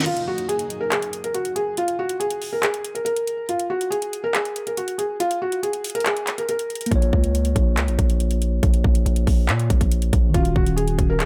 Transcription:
0.01 closed hi-hat medium
0.06 0.23 F4 medium
0.06 closed hi-hat medium
0.06 crash medium
0.17 closed hi-hat medium
0.28 0.44 F#4 medium
0.38 closed hi-hat medium
0.49 0.79 G#4 medium
0.49 closed hi-hat medium
0.59 closed hi-hat medium
0.70 closed hi-hat medium
0.81 0.89 A#4 medium
0.92 1.22 G#4 medium
0.92 clap loud
0.92 closed hi-hat medium
1.02 closed hi-hat medium
1.13 closed hi-hat medium
1.24 1.32 A#4 medium
1.24 closed hi-hat medium
1.34 1.51 F#4 medium
1.34 closed hi-hat medium
1.45 closed hi-hat medium
1.56 1.73 G#4 medium
1.56 closed hi-hat medium
1.77 1.94 F4 loud
1.77 closed hi-hat medium
1.88 closed hi-hat medium
1.99 2.16 F#4 medium
2.09 closed hi-hat medium
2.20 2.50 G#4 medium
2.20 closed hi-hat medium
2.31 closed hi-hat medium
2.42 open hi-hat medium
2.53 2.61 A#4 medium
2.63 2.93 G#4 medium
2.63 clap loud
2.63 closed hi-hat medium
2.74 closed hi-hat medium
2.85 closed hi-hat medium
2.95 3.03 A#4 medium
2.95 closed hi-hat medium
3.05 3.46 A#4 medium
3.05 closed hi-hat medium
3.16 closed hi-hat medium
3.27 closed hi-hat medium
3.49 3.66 F4 medium
3.49 closed hi-hat medium
3.59 closed hi-hat medium
3.70 3.87 F#4 medium
3.81 closed hi-hat medium
3.90 4.21 G#4 medium
3.90 closed hi-hat medium
4.02 closed hi-hat medium
4.13 closed hi-hat medium
4.24 4.32 A#4 medium
4.34 4.65 G#4 medium
4.34 clap loud
4.34 closed hi-hat medium
4.45 closed hi-hat medium
4.56 closed hi-hat medium
4.67 4.75 A#4 medium
4.67 closed hi-hat medium
4.77 4.94 F#4 medium
4.77 closed hi-hat medium
4.88 closed hi-hat medium
4.98 5.15 G#4 medium
4.98 closed hi-hat medium
5.20 5.37 F4 loud
5.20 closed hi-hat medium
5.31 closed hi-hat medium
5.42 5.58 F#4 medium
5.52 closed hi-hat medium
5.63 5.93 G#4 medium
5.63 closed hi-hat medium
5.73 closed hi-hat medium
5.84 closed hi-hat medium
5.84 open hi-hat medium
5.90 closed hi-hat medium
5.95 6.03 A#4 medium
5.95 closed hi-hat medium
6.00 closed hi-hat soft
6.06 6.36 G#4 medium
6.06 clap loud
6.06 closed hi-hat medium
6.17 closed hi-hat medium
6.27 clap medium
6.27 closed hi-hat medium
6.38 6.46 A#4 medium
6.38 closed hi-hat medium
6.49 6.89 A#4 medium
6.49 closed hi-hat medium
6.59 closed hi-hat medium
6.70 closed hi-hat soft
6.75 closed hi-hat medium
6.81 closed hi-hat medium
6.86 10.28 A#3 medium
6.86 closed hi-hat medium
6.91 7.12 A#1 loud
6.91 10.30 F4 medium
6.91 kick loud
6.91 closed hi-hat medium
6.96 10.32 C#5 medium
7.02 closed hi-hat medium
7.13 7.54 C#2 loud
7.13 kick loud
7.24 closed hi-hat medium
7.35 closed hi-hat medium
7.45 closed hi-hat medium
7.56 7.79 A#1 loud
7.56 kick medium
7.56 closed hi-hat medium
7.77 7.89 C#2 loud
7.77 clap loud
7.77 closed hi-hat medium
7.88 7.98 A#1 loud
7.88 closed hi-hat medium
7.99 8.60 A#1 loud
7.99 kick medium
7.99 closed hi-hat medium
8.10 closed hi-hat medium
8.20 closed hi-hat medium
8.31 closed hi-hat medium
8.42 closed hi-hat medium
8.63 8.84 A#1 loud
8.63 kick loud
8.63 closed hi-hat medium
8.74 closed hi-hat medium
8.84 9.05 A#1 loud
8.84 kick loud
8.95 closed hi-hat medium
9.06 9.26 A#1 loud
9.06 closed hi-hat medium
9.16 closed hi-hat medium
9.27 9.50 A#1 loud
9.27 kick medium
9.27 open hi-hat medium
9.49 9.69 A#2 loud
9.49 clap loud
9.49 closed hi-hat medium
9.60 closed hi-hat medium
9.70 10.11 A#1 loud
9.70 kick medium
9.70 closed hi-hat medium
9.81 kick medium
9.81 closed hi-hat medium
9.92 closed hi-hat medium
10.02 closed hi-hat medium
10.13 10.33 A#1 loud
10.13 kick loud
10.13 closed hi-hat medium
10.30 11.25 D#3 medium
10.34 10.55 D#1 loud
10.34 11.25 C#4 medium
10.34 10.51 F4 medium
10.34 kick loud
10.34 closed hi-hat medium
10.39 11.25 F#4 medium
10.45 closed hi-hat medium
10.56 10.97 D#1 loud
10.56 10.73 F#4 medium
10.56 kick loud
10.66 closed hi-hat medium
10.76 11.07 G#4 medium
10.76 closed hi-hat medium
10.88 closed hi-hat medium
10.99 11.25 D#1 loud
10.99 kick medium
10.99 closed hi-hat medium
11.10 11.18 A#4 medium
11.20 11.25 G#4 medium
11.20 clap loud
11.20 closed hi-hat medium

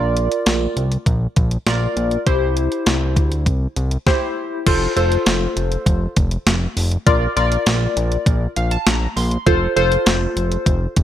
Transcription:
0.00 0.29 A#1 loud
0.00 0.91 F4 medium
0.00 0.91 A#4 medium
0.00 0.91 D5 loud
0.17 closed hi-hat medium
0.32 closed hi-hat medium
0.46 0.68 A#1 loud
0.46 snare loud
0.46 closed hi-hat medium
0.77 0.98 C2 medium
0.77 closed hi-hat medium
0.92 closed hi-hat medium
1.06 1.27 A#1 loud
1.06 kick medium
1.06 closed hi-hat medium
1.36 1.58 A#1 loud
1.36 kick loud
1.36 closed hi-hat medium
1.51 closed hi-hat medium
1.67 1.88 A#1 loud
1.67 2.19 F4 medium
1.67 2.19 A#4 medium
1.67 2.19 D5 medium
1.67 snare loud
1.67 closed hi-hat medium
1.97 2.18 A#1 loud
1.97 closed hi-hat medium
2.11 closed hi-hat soft
2.27 2.69 C2 loud
2.27 3.31 E4 medium
2.27 3.31 G4 medium
2.27 3.31 C5 medium
2.27 kick loud
2.27 closed hi-hat medium
2.57 closed hi-hat medium
2.72 closed hi-hat medium
2.86 3.18 C2 loud
2.86 snare loud
2.86 closed hi-hat medium
3.16 3.48 D2 medium
3.16 kick medium
3.16 closed hi-hat medium
3.32 closed hi-hat medium
3.46 3.67 C2 loud
3.46 kick medium
3.46 closed hi-hat medium
3.76 3.98 C2 loud
3.76 closed hi-hat medium
3.91 closed hi-hat medium
4.06 4.59 E4 medium
4.06 4.59 G4 medium
4.06 4.59 C5 medium
4.06 kick loud
4.06 snare medium
4.67 4.88 F1 loud
4.67 4.93 F4 medium
4.67 4.93 A4 medium
4.67 4.93 C5 loud
4.67 kick loud
4.67 closed hi-hat medium
4.67 crash loud
4.97 5.18 F1 loud
4.97 6.01 F4 medium
4.97 6.01 A4 medium
4.97 6.01 C5 loud
4.97 closed hi-hat medium
5.12 closed hi-hat medium
5.26 5.48 F1 loud
5.26 snare loud
5.26 closed hi-hat medium
5.57 5.78 F1 loud
5.57 closed hi-hat medium
5.72 closed hi-hat medium
5.86 6.07 F1 loud
5.86 kick loud
5.86 closed hi-hat medium
6.16 6.38 F1 loud
6.16 kick loud
6.16 closed hi-hat medium
6.31 closed hi-hat medium
6.47 6.68 F1 loud
6.47 snare loud
6.47 closed hi-hat medium
6.77 6.98 F1 loud
6.77 open hi-hat medium
6.91 closed hi-hat medium
7.07 7.28 A#1 loud
7.07 7.33 F4 medium
7.07 7.33 A#4 medium
7.07 7.33 D5 medium
7.07 kick loud
7.07 closed hi-hat medium
7.36 7.58 A#1 loud
7.36 8.41 F4 medium
7.36 8.41 A#4 medium
7.36 8.41 D5 loud
7.36 closed hi-hat medium
7.52 closed hi-hat medium
7.66 7.88 A#1 loud
7.66 snare loud
7.66 closed hi-hat medium
7.97 8.18 A#1 loud
7.97 closed hi-hat medium
8.12 closed hi-hat medium
8.26 8.47 A#1 loud
8.26 kick loud
8.26 closed hi-hat medium
8.56 8.78 A#1 loud
8.56 8.71 F5 medium
8.56 closed hi-hat medium
8.71 8.85 A5 medium
8.71 closed hi-hat medium
8.86 9.08 A#1 loud
8.86 9.14 A#5 medium
8.86 snare loud
8.86 closed hi-hat medium
9.16 9.38 A#1 loud
9.16 9.44 C6 medium
9.16 open hi-hat medium
9.31 closed hi-hat soft
9.46 9.68 F1 loud
9.46 9.72 F4 medium
9.46 9.73 A4 medium
9.46 9.73 C5 loud
9.46 kick loud
9.46 closed hi-hat medium
9.76 9.98 F1 loud
9.76 10.81 F4 medium
9.76 10.81 A4 medium
9.76 10.81 C5 loud
9.76 closed hi-hat medium
9.92 closed hi-hat medium
10.06 10.28 F1 loud
10.06 snare loud
10.06 closed hi-hat medium
10.37 10.58 F1 medium
10.37 closed hi-hat medium
10.52 closed hi-hat medium
10.66 10.87 F1 loud
10.66 kick loud
10.66 closed hi-hat medium
10.96 11.03 F1 loud
10.96 kick loud
10.96 closed hi-hat medium

